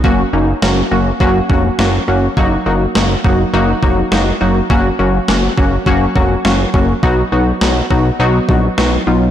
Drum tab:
SD |--o---o-|--o---o-|--o---o-|--o---o-|
BD |o---oo--|o--o-o--|o--ooo-o|o--o-o--|